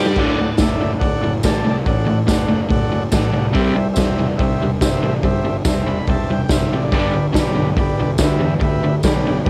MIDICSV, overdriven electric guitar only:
0, 0, Header, 1, 2, 480
1, 0, Start_track
1, 0, Tempo, 422238
1, 208, Time_signature, 4, 2, 24, 8
1, 10797, End_track
2, 0, Start_track
2, 0, Title_t, "Overdriven electric guitar"
2, 0, Program_c, 0, 29
2, 0, Note_on_c, 0, 55, 97
2, 0, Note_on_c, 0, 67, 109
2, 193, Note_off_c, 0, 55, 0
2, 198, Note_off_c, 0, 67, 0
2, 207, Note_on_c, 0, 38, 89
2, 210, Note_on_c, 0, 45, 97
2, 225, Note_on_c, 0, 50, 99
2, 432, Note_off_c, 0, 38, 0
2, 434, Note_off_c, 0, 45, 0
2, 441, Note_off_c, 0, 50, 0
2, 444, Note_on_c, 0, 38, 63
2, 459, Note_on_c, 0, 45, 80
2, 661, Note_off_c, 0, 38, 0
2, 668, Note_off_c, 0, 45, 0
2, 693, Note_on_c, 0, 38, 69
2, 708, Note_on_c, 0, 45, 86
2, 905, Note_off_c, 0, 38, 0
2, 912, Note_off_c, 0, 45, 0
2, 925, Note_on_c, 0, 38, 66
2, 927, Note_on_c, 0, 45, 73
2, 1140, Note_off_c, 0, 38, 0
2, 1141, Note_off_c, 0, 45, 0
2, 1168, Note_on_c, 0, 38, 69
2, 1169, Note_on_c, 0, 45, 78
2, 1382, Note_off_c, 0, 38, 0
2, 1382, Note_off_c, 0, 45, 0
2, 1401, Note_on_c, 0, 38, 61
2, 1408, Note_on_c, 0, 45, 73
2, 1618, Note_off_c, 0, 38, 0
2, 1621, Note_off_c, 0, 45, 0
2, 1642, Note_on_c, 0, 38, 84
2, 1644, Note_on_c, 0, 45, 94
2, 1858, Note_off_c, 0, 38, 0
2, 1859, Note_off_c, 0, 45, 0
2, 1875, Note_on_c, 0, 38, 69
2, 1881, Note_on_c, 0, 45, 79
2, 2094, Note_off_c, 0, 38, 0
2, 2097, Note_off_c, 0, 45, 0
2, 2122, Note_on_c, 0, 38, 70
2, 2126, Note_on_c, 0, 45, 77
2, 2311, Note_off_c, 0, 38, 0
2, 2325, Note_on_c, 0, 38, 65
2, 2329, Note_off_c, 0, 45, 0
2, 2342, Note_on_c, 0, 45, 77
2, 2558, Note_off_c, 0, 38, 0
2, 2567, Note_off_c, 0, 45, 0
2, 2576, Note_on_c, 0, 38, 75
2, 2580, Note_on_c, 0, 45, 82
2, 2804, Note_off_c, 0, 38, 0
2, 2806, Note_off_c, 0, 45, 0
2, 2829, Note_on_c, 0, 38, 74
2, 2829, Note_on_c, 0, 45, 82
2, 3050, Note_off_c, 0, 38, 0
2, 3050, Note_off_c, 0, 45, 0
2, 3066, Note_on_c, 0, 38, 72
2, 3068, Note_on_c, 0, 45, 80
2, 3289, Note_off_c, 0, 38, 0
2, 3290, Note_off_c, 0, 45, 0
2, 3322, Note_on_c, 0, 38, 73
2, 3324, Note_on_c, 0, 45, 72
2, 3532, Note_off_c, 0, 38, 0
2, 3538, Note_off_c, 0, 45, 0
2, 3545, Note_on_c, 0, 38, 74
2, 3551, Note_on_c, 0, 45, 82
2, 3768, Note_off_c, 0, 38, 0
2, 3771, Note_off_c, 0, 45, 0
2, 3783, Note_on_c, 0, 38, 68
2, 3790, Note_on_c, 0, 45, 84
2, 4007, Note_off_c, 0, 38, 0
2, 4011, Note_off_c, 0, 45, 0
2, 4013, Note_on_c, 0, 48, 82
2, 4023, Note_on_c, 0, 55, 99
2, 4025, Note_on_c, 0, 60, 95
2, 4251, Note_off_c, 0, 48, 0
2, 4257, Note_off_c, 0, 55, 0
2, 4257, Note_off_c, 0, 60, 0
2, 4269, Note_on_c, 0, 55, 80
2, 4277, Note_on_c, 0, 48, 75
2, 4490, Note_off_c, 0, 55, 0
2, 4494, Note_off_c, 0, 48, 0
2, 4523, Note_on_c, 0, 48, 81
2, 4527, Note_on_c, 0, 55, 87
2, 4737, Note_off_c, 0, 48, 0
2, 4739, Note_off_c, 0, 55, 0
2, 4768, Note_on_c, 0, 48, 78
2, 4768, Note_on_c, 0, 55, 73
2, 4979, Note_off_c, 0, 48, 0
2, 4980, Note_off_c, 0, 55, 0
2, 5008, Note_on_c, 0, 55, 88
2, 5013, Note_on_c, 0, 48, 81
2, 5220, Note_off_c, 0, 55, 0
2, 5222, Note_off_c, 0, 48, 0
2, 5252, Note_on_c, 0, 55, 70
2, 5253, Note_on_c, 0, 48, 68
2, 5462, Note_off_c, 0, 48, 0
2, 5462, Note_off_c, 0, 55, 0
2, 5475, Note_on_c, 0, 48, 74
2, 5480, Note_on_c, 0, 55, 89
2, 5693, Note_off_c, 0, 48, 0
2, 5696, Note_off_c, 0, 55, 0
2, 5705, Note_on_c, 0, 48, 74
2, 5718, Note_on_c, 0, 55, 71
2, 5929, Note_off_c, 0, 48, 0
2, 5935, Note_off_c, 0, 55, 0
2, 5951, Note_on_c, 0, 48, 75
2, 5951, Note_on_c, 0, 55, 77
2, 6171, Note_off_c, 0, 55, 0
2, 6172, Note_off_c, 0, 48, 0
2, 6187, Note_on_c, 0, 48, 71
2, 6191, Note_on_c, 0, 55, 75
2, 6405, Note_off_c, 0, 48, 0
2, 6408, Note_off_c, 0, 55, 0
2, 6419, Note_on_c, 0, 48, 65
2, 6422, Note_on_c, 0, 55, 87
2, 6646, Note_off_c, 0, 48, 0
2, 6647, Note_off_c, 0, 55, 0
2, 6667, Note_on_c, 0, 48, 67
2, 6676, Note_on_c, 0, 55, 73
2, 6890, Note_off_c, 0, 48, 0
2, 6894, Note_off_c, 0, 55, 0
2, 6922, Note_on_c, 0, 48, 76
2, 6924, Note_on_c, 0, 55, 82
2, 7138, Note_off_c, 0, 48, 0
2, 7139, Note_off_c, 0, 55, 0
2, 7162, Note_on_c, 0, 48, 68
2, 7164, Note_on_c, 0, 55, 73
2, 7378, Note_off_c, 0, 48, 0
2, 7379, Note_off_c, 0, 55, 0
2, 7404, Note_on_c, 0, 48, 81
2, 7404, Note_on_c, 0, 55, 81
2, 7619, Note_off_c, 0, 48, 0
2, 7620, Note_off_c, 0, 55, 0
2, 7647, Note_on_c, 0, 48, 75
2, 7648, Note_on_c, 0, 55, 84
2, 7857, Note_off_c, 0, 48, 0
2, 7861, Note_on_c, 0, 43, 91
2, 7862, Note_off_c, 0, 55, 0
2, 7877, Note_on_c, 0, 50, 94
2, 7883, Note_on_c, 0, 55, 91
2, 8098, Note_off_c, 0, 43, 0
2, 8101, Note_off_c, 0, 50, 0
2, 8109, Note_off_c, 0, 55, 0
2, 8115, Note_on_c, 0, 50, 79
2, 8116, Note_on_c, 0, 43, 77
2, 8318, Note_off_c, 0, 43, 0
2, 8323, Note_off_c, 0, 50, 0
2, 8331, Note_on_c, 0, 43, 76
2, 8337, Note_on_c, 0, 50, 86
2, 8564, Note_off_c, 0, 43, 0
2, 8567, Note_off_c, 0, 50, 0
2, 8583, Note_on_c, 0, 43, 72
2, 8589, Note_on_c, 0, 50, 72
2, 8810, Note_off_c, 0, 43, 0
2, 8814, Note_off_c, 0, 50, 0
2, 8832, Note_on_c, 0, 43, 70
2, 8842, Note_on_c, 0, 50, 82
2, 9055, Note_off_c, 0, 43, 0
2, 9060, Note_off_c, 0, 50, 0
2, 9092, Note_on_c, 0, 43, 69
2, 9099, Note_on_c, 0, 50, 78
2, 9306, Note_off_c, 0, 43, 0
2, 9309, Note_off_c, 0, 50, 0
2, 9331, Note_on_c, 0, 43, 77
2, 9333, Note_on_c, 0, 50, 79
2, 9535, Note_off_c, 0, 43, 0
2, 9546, Note_off_c, 0, 50, 0
2, 9549, Note_on_c, 0, 43, 78
2, 9564, Note_on_c, 0, 50, 78
2, 9769, Note_off_c, 0, 50, 0
2, 9772, Note_off_c, 0, 43, 0
2, 9783, Note_on_c, 0, 50, 85
2, 9785, Note_on_c, 0, 43, 76
2, 10012, Note_off_c, 0, 50, 0
2, 10013, Note_off_c, 0, 43, 0
2, 10049, Note_on_c, 0, 43, 70
2, 10057, Note_on_c, 0, 50, 80
2, 10265, Note_off_c, 0, 43, 0
2, 10270, Note_off_c, 0, 50, 0
2, 10294, Note_on_c, 0, 43, 77
2, 10305, Note_on_c, 0, 50, 86
2, 10508, Note_off_c, 0, 43, 0
2, 10514, Note_off_c, 0, 50, 0
2, 10537, Note_on_c, 0, 43, 58
2, 10542, Note_on_c, 0, 50, 81
2, 10750, Note_off_c, 0, 43, 0
2, 10752, Note_off_c, 0, 50, 0
2, 10797, End_track
0, 0, End_of_file